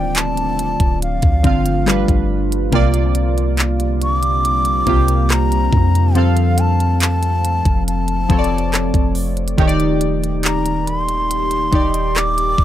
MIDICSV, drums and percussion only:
0, 0, Header, 1, 2, 480
1, 0, Start_track
1, 0, Key_signature, -1, "major"
1, 0, Tempo, 857143
1, 1527, Time_signature, 4, 2, 24, 8
1, 7081, End_track
2, 0, Start_track
2, 0, Title_t, "Drums"
2, 84, Note_on_c, 9, 42, 83
2, 91, Note_on_c, 9, 39, 118
2, 140, Note_off_c, 9, 42, 0
2, 147, Note_off_c, 9, 39, 0
2, 210, Note_on_c, 9, 42, 51
2, 266, Note_off_c, 9, 42, 0
2, 331, Note_on_c, 9, 42, 73
2, 387, Note_off_c, 9, 42, 0
2, 448, Note_on_c, 9, 36, 90
2, 448, Note_on_c, 9, 42, 52
2, 504, Note_off_c, 9, 36, 0
2, 504, Note_off_c, 9, 42, 0
2, 573, Note_on_c, 9, 42, 78
2, 629, Note_off_c, 9, 42, 0
2, 685, Note_on_c, 9, 42, 55
2, 688, Note_on_c, 9, 36, 91
2, 741, Note_off_c, 9, 42, 0
2, 744, Note_off_c, 9, 36, 0
2, 807, Note_on_c, 9, 42, 37
2, 808, Note_on_c, 9, 36, 103
2, 863, Note_off_c, 9, 42, 0
2, 864, Note_off_c, 9, 36, 0
2, 928, Note_on_c, 9, 42, 65
2, 984, Note_off_c, 9, 42, 0
2, 1052, Note_on_c, 9, 37, 92
2, 1052, Note_on_c, 9, 39, 111
2, 1052, Note_on_c, 9, 42, 66
2, 1108, Note_off_c, 9, 37, 0
2, 1108, Note_off_c, 9, 39, 0
2, 1108, Note_off_c, 9, 42, 0
2, 1167, Note_on_c, 9, 36, 95
2, 1171, Note_on_c, 9, 42, 49
2, 1223, Note_off_c, 9, 36, 0
2, 1227, Note_off_c, 9, 42, 0
2, 1413, Note_on_c, 9, 42, 67
2, 1469, Note_off_c, 9, 42, 0
2, 1526, Note_on_c, 9, 42, 61
2, 1527, Note_on_c, 9, 36, 112
2, 1582, Note_off_c, 9, 42, 0
2, 1583, Note_off_c, 9, 36, 0
2, 1645, Note_on_c, 9, 42, 56
2, 1701, Note_off_c, 9, 42, 0
2, 1764, Note_on_c, 9, 42, 84
2, 1820, Note_off_c, 9, 42, 0
2, 1891, Note_on_c, 9, 42, 50
2, 1947, Note_off_c, 9, 42, 0
2, 2002, Note_on_c, 9, 42, 75
2, 2009, Note_on_c, 9, 39, 123
2, 2058, Note_off_c, 9, 42, 0
2, 2065, Note_off_c, 9, 39, 0
2, 2127, Note_on_c, 9, 42, 51
2, 2183, Note_off_c, 9, 42, 0
2, 2249, Note_on_c, 9, 42, 71
2, 2305, Note_off_c, 9, 42, 0
2, 2367, Note_on_c, 9, 42, 52
2, 2423, Note_off_c, 9, 42, 0
2, 2492, Note_on_c, 9, 42, 75
2, 2548, Note_off_c, 9, 42, 0
2, 2604, Note_on_c, 9, 42, 54
2, 2660, Note_off_c, 9, 42, 0
2, 2725, Note_on_c, 9, 42, 38
2, 2726, Note_on_c, 9, 36, 94
2, 2781, Note_off_c, 9, 42, 0
2, 2782, Note_off_c, 9, 36, 0
2, 2847, Note_on_c, 9, 42, 65
2, 2903, Note_off_c, 9, 42, 0
2, 2970, Note_on_c, 9, 42, 68
2, 2971, Note_on_c, 9, 37, 91
2, 2971, Note_on_c, 9, 39, 105
2, 3026, Note_off_c, 9, 42, 0
2, 3027, Note_off_c, 9, 37, 0
2, 3027, Note_off_c, 9, 39, 0
2, 3091, Note_on_c, 9, 42, 48
2, 3147, Note_off_c, 9, 42, 0
2, 3206, Note_on_c, 9, 36, 89
2, 3262, Note_off_c, 9, 36, 0
2, 3334, Note_on_c, 9, 42, 65
2, 3390, Note_off_c, 9, 42, 0
2, 3446, Note_on_c, 9, 42, 61
2, 3502, Note_off_c, 9, 42, 0
2, 3565, Note_on_c, 9, 42, 58
2, 3621, Note_off_c, 9, 42, 0
2, 3683, Note_on_c, 9, 42, 82
2, 3739, Note_off_c, 9, 42, 0
2, 3810, Note_on_c, 9, 42, 53
2, 3866, Note_off_c, 9, 42, 0
2, 3923, Note_on_c, 9, 42, 81
2, 3930, Note_on_c, 9, 39, 121
2, 3979, Note_off_c, 9, 42, 0
2, 3986, Note_off_c, 9, 39, 0
2, 4047, Note_on_c, 9, 42, 52
2, 4103, Note_off_c, 9, 42, 0
2, 4170, Note_on_c, 9, 42, 72
2, 4226, Note_off_c, 9, 42, 0
2, 4286, Note_on_c, 9, 36, 92
2, 4287, Note_on_c, 9, 42, 53
2, 4342, Note_off_c, 9, 36, 0
2, 4343, Note_off_c, 9, 42, 0
2, 4412, Note_on_c, 9, 42, 74
2, 4468, Note_off_c, 9, 42, 0
2, 4525, Note_on_c, 9, 42, 54
2, 4581, Note_off_c, 9, 42, 0
2, 4647, Note_on_c, 9, 36, 96
2, 4647, Note_on_c, 9, 42, 50
2, 4703, Note_off_c, 9, 36, 0
2, 4703, Note_off_c, 9, 42, 0
2, 4727, Note_on_c, 9, 42, 52
2, 4783, Note_off_c, 9, 42, 0
2, 4807, Note_on_c, 9, 42, 50
2, 4863, Note_off_c, 9, 42, 0
2, 4892, Note_on_c, 9, 42, 69
2, 4893, Note_on_c, 9, 37, 94
2, 4893, Note_on_c, 9, 39, 109
2, 4948, Note_off_c, 9, 42, 0
2, 4949, Note_off_c, 9, 37, 0
2, 4949, Note_off_c, 9, 39, 0
2, 5007, Note_on_c, 9, 36, 98
2, 5011, Note_on_c, 9, 42, 50
2, 5063, Note_off_c, 9, 36, 0
2, 5067, Note_off_c, 9, 42, 0
2, 5124, Note_on_c, 9, 46, 61
2, 5180, Note_off_c, 9, 46, 0
2, 5247, Note_on_c, 9, 42, 42
2, 5303, Note_off_c, 9, 42, 0
2, 5307, Note_on_c, 9, 42, 54
2, 5363, Note_off_c, 9, 42, 0
2, 5367, Note_on_c, 9, 36, 105
2, 5367, Note_on_c, 9, 42, 58
2, 5423, Note_off_c, 9, 36, 0
2, 5423, Note_off_c, 9, 42, 0
2, 5428, Note_on_c, 9, 42, 69
2, 5484, Note_off_c, 9, 42, 0
2, 5487, Note_on_c, 9, 42, 55
2, 5543, Note_off_c, 9, 42, 0
2, 5605, Note_on_c, 9, 42, 81
2, 5661, Note_off_c, 9, 42, 0
2, 5732, Note_on_c, 9, 42, 53
2, 5788, Note_off_c, 9, 42, 0
2, 5842, Note_on_c, 9, 42, 79
2, 5849, Note_on_c, 9, 39, 116
2, 5898, Note_off_c, 9, 42, 0
2, 5905, Note_off_c, 9, 39, 0
2, 5967, Note_on_c, 9, 42, 55
2, 6023, Note_off_c, 9, 42, 0
2, 6090, Note_on_c, 9, 42, 69
2, 6146, Note_off_c, 9, 42, 0
2, 6208, Note_on_c, 9, 42, 54
2, 6264, Note_off_c, 9, 42, 0
2, 6332, Note_on_c, 9, 42, 80
2, 6388, Note_off_c, 9, 42, 0
2, 6445, Note_on_c, 9, 42, 53
2, 6501, Note_off_c, 9, 42, 0
2, 6566, Note_on_c, 9, 42, 38
2, 6567, Note_on_c, 9, 36, 97
2, 6622, Note_off_c, 9, 42, 0
2, 6623, Note_off_c, 9, 36, 0
2, 6687, Note_on_c, 9, 42, 64
2, 6743, Note_off_c, 9, 42, 0
2, 6811, Note_on_c, 9, 42, 65
2, 6812, Note_on_c, 9, 37, 90
2, 6812, Note_on_c, 9, 39, 114
2, 6867, Note_off_c, 9, 42, 0
2, 6868, Note_off_c, 9, 37, 0
2, 6868, Note_off_c, 9, 39, 0
2, 6932, Note_on_c, 9, 42, 51
2, 6988, Note_off_c, 9, 42, 0
2, 7047, Note_on_c, 9, 36, 92
2, 7081, Note_off_c, 9, 36, 0
2, 7081, End_track
0, 0, End_of_file